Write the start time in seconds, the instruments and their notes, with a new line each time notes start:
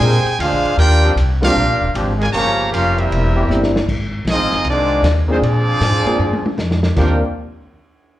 Already playing: trombone section C3 G#4, trumpet section C5 G5 G#5
0.00 upright bass A#2, trombone section G#3 C4 D4 A#4, ride
0.25 muted upright bass stroke, ride
0.39 upright bass D2, trombone section G#3 D4 F4, trumpet section D4 G#4 C5 F5, hi-hat pedal, ride
0.51 upright bass A#1
0.64 upright bass G#1, ride
0.77 upright bass D#2, trombone section A#3 D4 G4, trumpet section F4 A#4 D5 G5, ride
1.04 trombone section F3 C4 D4 G4
1.16 upright bass C2, hi-hat pedal, ride
1.41 trombone section F3 A#3 D4 F4 G4, grand piano G3 A#3 C4 D4 F4, trumpet section D4 G4 A#4 F5, snare, ride
1.46 trombone section C4
1.56 upright bass A#1
1.69 upright bass G1
1.81 upright bass D#1
1.94 upright bass G#1, trombone section F3 C4 D4 G4, hi-hat pedal, ride
2.19 trombone section G#3, trumpet section F4 A#4 D5 G#5, ride
2.33 upright bass G1, trombone section C#3 F3 A#3 C#4 G4, trumpet section G4 C#5 F5 A#5, ride
2.72 upright bass F1, trombone section A#3 C#4 F4, trumpet section C#4 G4 A#4 F5, hi-hat pedal, ride
2.97 trombone section G3 A#3 E4, trumpet section C4 G4 A#4 E5, ride
3.11 upright bass E1, ride
3.35 trombone section E3 A#3 C4 G4
3.49 upright bass G1, grand piano A#3 C4 D4 E4 G4, hi-hat pedal
3.63 snare
3.76 snare
3.88 upright bass G#1, kick, crash
4.25 upright bass A#1, snare, hi-hat pedal, ride
4.29 trombone section G#3 C4 D#4, trumpet section C4 F4 G#4 D#5
4.39 upright bass G#1
4.52 upright bass F1, snare, ride
4.64 upright bass C2, ride
4.69 trombone section D#3 G#3 D4, trumpet section C4 F4 G#4 D5
5.03 upright bass D#2, snare, hi-hat pedal, ride
5.28 trombone section D#3 G#3 C4, trumpet section G#3 D#4 F4 C5, grand piano A#3 C4 D4 F4 G#4
5.42 upright bass A#2, trombone section F3 D4 G#4, trumpet section C4 F4 G#4 D5, ride
5.81 upright bass G#2, snare, hi-hat pedal, ride
6.05 grand piano A#3 C4 D4 F4 G#4, muted upright bass stroke, ride
6.19 upright bass G2, floor tom
6.33 high tom
6.46 high tom
6.58 upright bass F2, snare, hi-hat pedal
6.71 snare
6.83 snare
6.96 upright bass D#2, trombone section D#3 A#3 D4 G4, grand piano A#3 C4 D4 F4 G4, trumpet section F4 A#4 D5 G5, kick, snare, crash